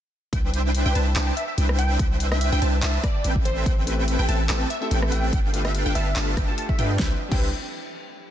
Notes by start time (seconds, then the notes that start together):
0.33 C2 D4 B4 C5 E5 G5, kick, closed hi-hat
0.54 closed hi-hat
0.75 closed hi-hat
0.86 C2 D4 B4 C5 E5 G5
0.95 C2 D4 B4 C5 E5 A5, closed hi-hat
1.16 C2 D4 B4 C5 E5 G5 A5, clap, closed hi-hat
1.27 G5
1.37 E5, closed hi-hat
1.48 E5
1.58 C2 D4 B4 C5 E5 G5, closed hi-hat
1.69 cross-stick
1.79 G5, closed hi-hat
1.99 D4 B4 C5 E5 G5, kick, closed hi-hat
2.20 closed hi-hat
2.32 E5, cross-stick
2.41 E5, closed hi-hat
2.52 C2 D4 B4 C5 E5 G5
2.62 C2 D4 B4 C5 E5 A5, closed hi-hat
2.83 C2 D4 B4 C5 E5 A5, clap, closed hi-hat
3.04 D5, kick, cross-stick, closed hi-hat
3.24 A1 C4 A4 B4 E5 G5, closed hi-hat
3.36 kick
3.45 C5, closed hi-hat
3.66 A1 C4 A4 B4 E5 G5, kick, closed hi-hat
3.86 A3 C4 E4 G4 B4, closed hi-hat
4.08 closed hi-hat
4.18 A1 A3 C4 E4 G4 A4 B4 E5 G5
4.28 A1 C4 A4 B4 E5 A5, closed hi-hat
4.49 A1 A3 C4 E4 G4 A4 B4 E5 G5 A5, clap, closed hi-hat
4.61 G5
4.70 E5, closed hi-hat
4.81 A3 C4 E4 G4 A4 E5
4.91 A1 C4 A4 B4 E5 G5, closed hi-hat
5.02 cross-stick
5.11 A3 C4 E4 G4 B4 G5, closed hi-hat
5.33 G1 D4 A4 B4 F5 G5, kick, closed hi-hat
5.53 A3 D4 F4 G4 B4, closed hi-hat
5.65 E5, cross-stick
5.75 closed hi-hat
5.85 G1 A3 D4 F4 G4 A4 B4 F5 G5
5.95 G1 D4 A4 B4 E5 F5 A5, closed hi-hat
6.15 G1 A3 D4 F4 G4 A4 B4 F5 A5, clap, closed hi-hat
6.37 G1 D4 A4 B4 F5 G5, kick, cross-stick, closed hi-hat
6.47 A3 D4 F4 G4 A4 A5
6.58 A5, closed hi-hat
6.69 E5, kick
6.78 G2 A3 D4 F4 G4 A4 B4 F5 G5, closed hi-hat
6.96 C2 G3 C4 D4 B4 C5 E5 G5, kick, snare
7.01 E4 B4
7.29 C2 G3 C4 D4 B4 C5 E5 G5, kick, crash
7.33 E4 B4